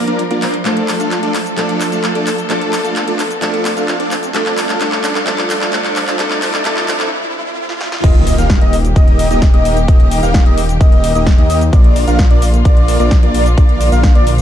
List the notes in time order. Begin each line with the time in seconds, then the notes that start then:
Already playing: F3 A#3 D4 A#4, riser
0.07 A#3 D4 F4 A#4 D5, closed hi-hat
0.19 closed hi-hat
0.31 A#3 D4 F4 A#4 D5, closed hi-hat
0.42 F3 A#3 D4 C5, clap, open hi-hat
0.54 closed hi-hat
0.64 F3 A3 D4 F4 A4 D5, clap, closed hi-hat, cabasa
0.77 closed hi-hat
0.88 clap, open hi-hat, cabasa
1.00 A3 D4 F4 A4 F5, closed hi-hat, cabasa
1.11 clap, closed hi-hat, cabasa
1.23 A3 D4 F4 A4 D5, closed hi-hat
1.34 clap, open hi-hat, cabasa
1.46 closed hi-hat, cabasa
1.56 F3 A3 D4 F4 A4 D5, clap, closed hi-hat, cabasa
1.69 closed hi-hat
1.81 clap, open hi-hat, cabasa
1.92 A3 D4 F4 A4 F5, closed hi-hat, cabasa
2.04 clap, closed hi-hat, cabasa
2.15 A3 D4 F4 A4 D5, closed hi-hat
2.27 clap, open hi-hat, cabasa
2.38 closed hi-hat, cabasa
2.49 F3 A3 D4 F4 A4 D5, clap, closed hi-hat, cabasa
2.61 closed hi-hat
2.73 clap, open hi-hat, cabasa
2.84 A3 D4 F4 A4 F5, closed hi-hat, cabasa
2.96 clap, closed hi-hat, cabasa
3.08 A3 D4 F4 A4 D5, closed hi-hat
3.19 clap, open hi-hat, cabasa
3.31 closed hi-hat, cabasa
3.41 F3 A3 D4 F4 A4 D5, clap, closed hi-hat, cabasa
3.54 closed hi-hat
3.65 clap, open hi-hat, cabasa
3.77 A3 D4 F4 A4 F5, closed hi-hat, cabasa
3.88 clap, closed hi-hat, cabasa
4.00 A3 D4 F4 A4 D5, closed hi-hat
4.11 clap, open hi-hat, cabasa
4.23 closed hi-hat, cabasa
4.33 F3 G3 A3 D4 F4 A4 D5, clap, closed hi-hat, cabasa
4.46 clap, closed hi-hat
4.58 clap, open hi-hat, cabasa
4.69 A3 D4 F4 A4 F5, clap, closed hi-hat, cabasa
4.79 F3 A3 D4 F4 A4 D5, clap, closed hi-hat, cabasa
4.92 clap, closed hi-hat
5.04 clap, open hi-hat, cabasa
5.15 A3 D4 F4 A4 F5, clap, closed hi-hat, cabasa
5.26 F3 A3 D4 F4 A4 D5, clap, closed hi-hat, cabasa
5.38 clap, closed hi-hat
5.50 clap, open hi-hat, cabasa
5.61 A3 D4 F4 A4 F5, clap, closed hi-hat, cabasa
5.72 F3 A3 D4 F4 A4 D5, clap, closed hi-hat, cabasa
5.85 clap, closed hi-hat
5.96 clap, open hi-hat, cabasa
6.08 A3 D4 F4 A4 F5, clap, closed hi-hat, cabasa
6.18 F3 A3 C4 D4 F4 A4 D5, clap, closed hi-hat, cabasa
6.31 clap, closed hi-hat
6.41 F3 A3 D4 F4 A4 D5, clap, open hi-hat, cabasa
6.54 clap, closed hi-hat, cabasa
6.64 F3 A3 D4 F4 A4 D5, clap, closed hi-hat, cabasa
6.77 clap, closed hi-hat
6.87 F3 A3 D4 F4 A4 D5, clap, open hi-hat, cabasa
7.00 clap, closed hi-hat, cabasa
7.69 snare
7.81 snare
7.92 snare
8.04 D#1 D#3 A#3 D#4 G4 A#4 D#5, kick, closed hi-hat, crash, impact, cabasa
8.15 closed hi-hat
8.27 open hi-hat, cabasa
8.38 D#1 A#3 D#4 G4 A#4 F5, closed hi-hat, cabasa
8.50 kick, snare, closed hi-hat, cabasa
8.61 D#1 A#3 D#4 G4 A#4 D#5, closed hi-hat
8.73 open hi-hat, cabasa
8.85 closed hi-hat, cabasa
8.96 D#1 A#3 D#4 G4 A#4 D#5, kick, closed hi-hat, cabasa
9.08 closed hi-hat
9.19 open hi-hat, cabasa
9.31 D#1 A#3 D#4 G4 A#4 D#5, closed hi-hat, cabasa
9.42 kick, snare, closed hi-hat, cabasa
9.54 D#1 A#3 D#4 G4 A#4 D#5, closed hi-hat
9.65 open hi-hat, cabasa
9.77 closed hi-hat, cabasa
9.88 D#1 A#3 D#4 G4 A#4 D#5, kick, closed hi-hat, cabasa
10.00 closed hi-hat
10.11 open hi-hat, cabasa
10.23 D#1 A#3 D#4 G4 A#4 F5, closed hi-hat, cabasa
10.34 kick, snare, closed hi-hat, cabasa
10.46 D#1 A#3 D#4 G4 A#4 D#5, closed hi-hat
10.58 open hi-hat, cabasa
10.69 closed hi-hat, cabasa
10.81 D#1 A#3 D#4 G4 A#4 D#5, kick, closed hi-hat, cabasa
10.92 closed hi-hat
11.04 open hi-hat, cabasa
11.15 D#1 A#3 D#4 G4 A#4 D#5, closed hi-hat, cabasa
11.27 kick, snare, closed hi-hat, cabasa
11.38 D#2 A#3 D#4 G4 A#4 D#5, closed hi-hat
11.50 open hi-hat, cabasa
11.61 closed hi-hat, cabasa
11.73 A#1 D3 A#3 D4 F4 A#4 D5, kick, closed hi-hat, cabasa
11.84 closed hi-hat
11.96 open hi-hat, cabasa
12.07 A#1 A#3 D4 F4 A#4 F5, closed hi-hat, cabasa
12.19 kick, snare, closed hi-hat, cabasa
12.31 A#1 A#3 D4 F4 A#4 D5, closed hi-hat
12.42 open hi-hat, cabasa
12.54 closed hi-hat, cabasa
12.65 A#1 A#3 D4 F4 A#4 D5, kick, closed hi-hat, cabasa
12.77 closed hi-hat
12.88 open hi-hat, cabasa
13.00 A#1 A#3 D4 F4 A#4 D5, closed hi-hat, cabasa
13.11 kick, snare, closed hi-hat, cabasa
13.23 A#1 A#3 D4 F4 A#4 D5, closed hi-hat
13.34 open hi-hat, cabasa
13.46 closed hi-hat, cabasa
13.58 A#1 A#3 D4 F4 A#4 D5, kick, closed hi-hat, cabasa
13.69 closed hi-hat
13.81 open hi-hat, cabasa
13.92 A#1 A#3 D4 F4 A#4 F5, closed hi-hat, cabasa
14.03 kick, snare, closed hi-hat, cabasa
14.15 A#1 A#3 D4 F4 A#4 D5, closed hi-hat
14.27 open hi-hat, cabasa
14.38 closed hi-hat, cabasa